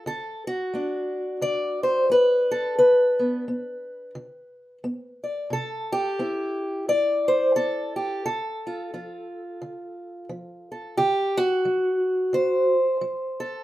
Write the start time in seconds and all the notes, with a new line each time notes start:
0.06 D3 A4
0.47 F#4
0.74 A3 D4
1.41 D3 D5
1.83 C5
2.10 A3 B4
2.51 A4
2.79 D3 B4
3.19 B3
3.48 B3
4.15 D3
4.84 B3
5.24 D5
5.50 C3 A4
5.92 G4
6.19 C4 E4
6.88 G2 D5
7.28 C5
7.56 C4 A4
7.96 G4
8.26 D3 A4
8.67 F4
8.94 F3 F4
9.62 D3
10.29 F3
10.72 A4
10.97 D3 G4
11.37 F#4
11.65 F#3
12.33 D3 C5
13.01 F#3
13.40 A4